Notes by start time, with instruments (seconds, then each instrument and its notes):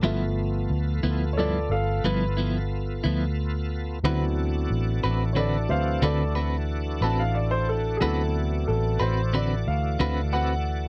0.02 fingered electric bass G1, clean electric guitar G2 F3 B3 E4, grand piano F3 A3 B3 E5, tonewheel organ B3 F4 A4
0.70 fingered electric bass D2
1.03 fingered electric bass D2, clean electric guitar F3 B3 E4
1.33 grand piano C#5
1.37 clean electric guitar G2 F3 B3 E4, grand piano A4 D5
1.70 fingered electric bass G1, grand piano A4 F5
2.04 fingered electric bass G1, clean electric guitar G2 F3 B3 E4, grand piano B4
2.37 clean electric guitar F3 B3 E4
3.04 fingered electric bass D2, clean electric guitar F3 B3 E4
4.03 fingered electric bass D2, clean electric guitar D3 C4 F#4 B4, tonewheel organ E3 D4 F#4 A4, grand piano F#3 B3 C4 E4
4.70 fingered electric bass A1
5.04 fingered electric bass A1, clean electric guitar C4 F#4 B4
5.33 clean electric guitar D3 C4 F#4 B4, grand piano A4 C#5
5.38 grand piano D5
5.68 fingered electric bass D2, grand piano F#3 C4 B4 C5 E5 F5
6.02 fingered electric bass D2, clean electric guitar D3 C4 F#4 B4, grand piano A4 D5
6.35 clean electric guitar C4 F#4 B4
7.01 fingered electric bass A1, clean electric guitar C4 F#4 B4, grand piano A5
7.20 grand piano F5
7.35 grand piano D5
7.51 grand piano C5
7.69 grand piano A4
7.97 clean electric guitar D3, grand piano F#3 B3 C4 E4 G#4
8.01 fingered electric bass D2, tonewheel organ E3 F#4 A4 D5, clean electric guitar C4 F#4 B4, grand piano A4
8.68 fingered electric bass A1, grand piano A4
9.00 fingered electric bass A1, clean electric guitar C4 F#4 B4, grand piano C5
9.33 clean electric guitar D3 C4 F#4 B4, grand piano D5
9.67 fingered electric bass D2, grand piano F5
10.00 fingered electric bass D2, clean electric guitar D3 C4 F#4 B4
10.33 clean electric guitar C4 F#4 B4, grand piano F#5